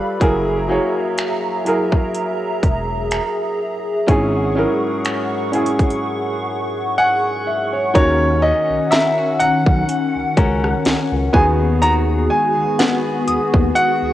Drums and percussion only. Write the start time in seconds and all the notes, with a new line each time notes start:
0.21 kick, closed hi-hat
1.18 finger snap, closed hi-hat
1.66 closed hi-hat
1.92 kick
2.15 closed hi-hat
2.63 kick, closed hi-hat
3.11 finger snap, closed hi-hat
4.08 kick, closed hi-hat
5.05 finger snap, closed hi-hat
5.53 closed hi-hat
5.66 closed hi-hat
5.79 kick, closed hi-hat
5.90 closed hi-hat
7.95 kick, closed hi-hat
8.92 snare, closed hi-hat
9.40 closed hi-hat
9.66 kick
9.89 closed hi-hat
10.37 kick, closed hi-hat
10.64 cross-stick
10.85 snare, closed hi-hat
11.34 kick
11.82 closed hi-hat
12.79 snare, closed hi-hat
13.27 closed hi-hat
13.54 kick
13.76 closed hi-hat